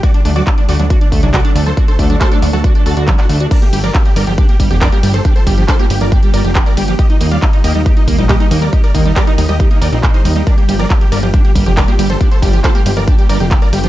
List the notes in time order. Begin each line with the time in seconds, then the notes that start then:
Already playing: D3
0.03 F#3 A3 F#4 A4 D5, kick, closed hi-hat
0.14 D4, closed hi-hat
0.25 D2 A3 D4, open hi-hat
0.36 F#3 F#4 D5, closed hi-hat
0.47 D4 F#4, kick, clap, closed hi-hat
0.58 D4, closed hi-hat
0.68 D2 A3 F#4 D5, open hi-hat
0.79 D2 F#3 D4, closed hi-hat
0.90 D4 F#4, kick, closed hi-hat
1.01 D4, closed hi-hat
1.12 D2 A3, kick, open hi-hat
1.23 C2 F#3 D4, closed hi-hat
1.34 F#4 D5, kick, clap, closed hi-hat
1.45 D4, closed hi-hat
1.55 D2 A3 D4, open hi-hat
1.66 F#3 A4 C5, closed hi-hat
1.77 D4 F#4, kick, closed hi-hat
1.88 D4 A4 C5, closed hi-hat
1.99 D2 A3 D4, kick, open hi-hat
2.10 F#3 D4, closed hi-hat
2.21 F#4 A4 C5, kick, clap, closed hi-hat
2.32 D4, closed hi-hat
2.42 D2 A3 D4, open hi-hat
2.53 D2 F#3 F#4 A4
2.64 D4 F#4, kick, closed hi-hat
2.75 A3 D4, closed hi-hat
2.86 D2 D4 F#4 A4, open hi-hat
2.97 D2 D4 F#4, closed hi-hat
3.08 F#3 D4, kick, clap, closed hi-hat
3.18 D4 F#4, clap, closed hi-hat
3.29 D2 A3 D4, open hi-hat
3.40 D4 F#4, closed hi-hat
3.51 G3 A#3 D4 F4 G4 A#4 D5, kick, closed hi-hat, crash
3.62 A#3 G4, closed hi-hat
3.73 G1 G3 G4, open hi-hat, ride
3.84 F3 A#4 D5, closed hi-hat
3.95 D4 G4, kick, clap, closed hi-hat
4.05 A#3 G4, closed hi-hat
4.16 G1 G3 A#4 D5, open hi-hat, ride
4.27 G1 F3 G4, closed hi-hat
4.38 D4 G4, kick, closed hi-hat
4.49 A#3 G4, closed hi-hat
4.60 G1 G3, kick, open hi-hat, ride
4.71 F1 F3 G4, closed hi-hat
4.81 D4 A#4 D5, kick, clap, closed hi-hat
4.92 A#3 G4, closed hi-hat
5.03 G1 G3 G4, open hi-hat, ride
5.14 F3 A4 C5, closed hi-hat
5.25 D4 G4, kick, closed hi-hat
5.36 A#3 A4 C5, closed hi-hat
5.47 G1 G3 G4, kick, open hi-hat, ride
5.58 F3 G4, closed hi-hat
5.68 D4 A4 C5, kick, clap, closed hi-hat
5.79 A#3 G4, closed hi-hat
5.90 G1 G3 G4, open hi-hat, ride
6.01 G1 F3 A#4 D5, closed hi-hat
6.12 D4 G4, kick, closed hi-hat
6.23 G3 G4, closed hi-hat
6.34 G1 G3 A#4 D5, open hi-hat, ride
6.44 F1 F3 G4, closed hi-hat
6.55 D4 G4, kick, clap, closed hi-hat
6.66 A#3 A#4 D5, closed hi-hat
6.77 G1 G3 G4, open hi-hat, ride
6.88 F3 G4, closed hi-hat
6.99 D#3 G4 A#4 D#5, kick, closed hi-hat
7.10 D#4, closed hi-hat
7.21 D#2 A#3 D#4, open hi-hat, ride
7.31 G3 D5 F5, closed hi-hat
7.42 D#4 G4, kick, clap, closed hi-hat
7.53 D#4, closed hi-hat
7.64 D#2 A#3 G4 D#5, open hi-hat, ride
7.75 D#2 G3 D#4, closed hi-hat
7.86 D#4 G4, kick, closed hi-hat
7.97 D#4, closed hi-hat
8.07 D#2 A#3, kick, open hi-hat, ride
8.18 A#1 G3 D#4, closed hi-hat
8.29 G4 D#5, kick, clap, closed hi-hat
8.40 D#4, closed hi-hat
8.51 D#2 A#3 D#4, open hi-hat, ride
8.62 G3 A#4 D5, closed hi-hat
8.73 D#4 G4, kick, closed hi-hat
8.84 D#4 A#4 D5, closed hi-hat
8.95 D#2 A#3 D#4, kick, open hi-hat, ride
9.05 G3 D#4, closed hi-hat
9.16 G4 A#4 D5, kick, clap, closed hi-hat
9.27 D#4, closed hi-hat
9.38 D#2 A#3 D#4, open hi-hat, ride
9.49 D#2 G3 G4 D#5, closed hi-hat
9.60 D#4 G4, kick, closed hi-hat
9.71 A#3 D#4, closed hi-hat
9.81 D#2 D#4 A#4 D5, open hi-hat, ride
9.92 A#1 C4 D#4, closed hi-hat
10.03 C4 D#4, kick, clap, closed hi-hat
10.14 D#4 C5, closed hi-hat
10.25 D#2 G3 D#4, open hi-hat, ride
10.36 G3 D#4, closed hi-hat
10.47 D3 A#3 D4 F4 A#4 D5, kick, closed hi-hat
10.58 A#3 G4, closed hi-hat
10.68 G1 G3 G4, open hi-hat, ride
10.79 F3 A#4 D5, closed hi-hat
10.90 D4 G4, kick, clap, closed hi-hat
11.01 A#3 G4, closed hi-hat
11.12 G1 G3 A#4 D5, open hi-hat, ride
11.23 G1 F3 G4, closed hi-hat
11.34 D4 G4, kick, closed hi-hat
11.45 A#3 G4, closed hi-hat
11.55 G1 G3, kick, open hi-hat, ride
11.66 F1 F3 G4, closed hi-hat
11.77 D4 A#4 D5, kick, clap, closed hi-hat
11.88 A#3 G4, closed hi-hat
11.99 G1 G3 G4, open hi-hat, ride
12.10 F3 A4 C5, closed hi-hat
12.21 D4 G4, kick, closed hi-hat
12.31 A#3 A4 C5, closed hi-hat
12.42 G1 G3 G4, kick, open hi-hat, ride
12.53 F3 G4, closed hi-hat
12.64 D4 A4 C5, kick, clap, closed hi-hat
12.75 A#3 G4, closed hi-hat
12.86 G1 G3 G4, open hi-hat, ride
12.97 G1 F3 A#4 D5, closed hi-hat
13.07 D4 G4, kick, closed hi-hat
13.18 G3 G4, closed hi-hat
13.29 G1 G3 A#4 D5, open hi-hat, ride
13.40 F1 F3 G4, closed hi-hat
13.51 D4 G4, kick, clap, closed hi-hat
13.62 A#3 A#4 D5, closed hi-hat
13.73 G1 G3 G4, open hi-hat, ride
13.84 F3 G4, closed hi-hat